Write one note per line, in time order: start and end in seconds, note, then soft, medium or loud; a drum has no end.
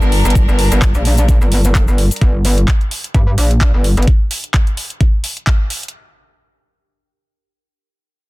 0.00 0.23 G1 medium
0.00 2.18 G3 medium
0.00 0.35 D4 medium
0.00 2.18 D4 medium
0.00 0.35 G4 medium
0.00 2.18 A#4 medium
0.00 cabasa soft
0.12 open hi-hat medium
0.25 0.46 G1 medium
0.25 closed hi-hat soft
0.25 cabasa medium
0.30 closed hi-hat medium
0.35 kick loud
0.35 cabasa medium
0.48 0.70 G1 medium
0.48 cabasa soft
0.59 open hi-hat loud
0.72 0.93 G1 medium
0.72 closed hi-hat soft
0.72 cabasa medium
0.82 kick loud
0.82 clap loud
0.82 closed hi-hat medium
0.82 cabasa medium
0.95 1.39 A#1 medium
0.95 closed hi-hat soft
0.95 cabasa soft
1.05 open hi-hat medium
1.18 closed hi-hat soft
1.18 cabasa medium
1.28 kick loud
1.28 closed hi-hat medium
1.28 cabasa medium
1.41 1.86 G1 medium
1.41 cabasa soft
1.52 open hi-hat loud
1.64 closed hi-hat soft
1.64 cabasa medium
1.75 kick loud
1.75 clap loud
1.75 closed hi-hat medium
1.75 cabasa medium
1.88 2.09 G1 medium
1.88 cabasa soft
1.98 open hi-hat medium
2.11 closed hi-hat soft
2.11 cabasa medium
2.16 closed hi-hat medium
2.21 2.66 G1 loud
2.21 kick loud
2.21 closed hi-hat medium
2.45 open hi-hat loud
2.58 closed hi-hat soft
2.68 kick loud
2.68 clap loud
2.68 closed hi-hat medium
2.81 closed hi-hat soft
2.91 open hi-hat medium
3.04 closed hi-hat soft
3.14 3.36 G2 medium
3.14 kick loud
3.14 closed hi-hat medium
3.38 3.72 A#1 medium
3.38 open hi-hat loud
3.51 closed hi-hat soft
3.61 kick loud
3.61 clap loud
3.61 closed hi-hat medium
3.74 3.95 G1 medium
3.84 open hi-hat medium
3.97 4.06 G1 medium
3.97 closed hi-hat soft
4.02 closed hi-hat medium
4.08 kick loud
4.08 closed hi-hat medium
4.31 open hi-hat loud
4.44 closed hi-hat soft
4.54 kick loud
4.54 clap loud
4.54 closed hi-hat medium
4.67 closed hi-hat soft
4.77 open hi-hat medium
4.90 closed hi-hat soft
5.01 kick loud
5.01 closed hi-hat medium
5.24 open hi-hat loud
5.37 closed hi-hat soft
5.47 kick loud
5.47 clap loud
5.47 closed hi-hat medium
5.70 open hi-hat medium
5.83 closed hi-hat soft
5.88 closed hi-hat medium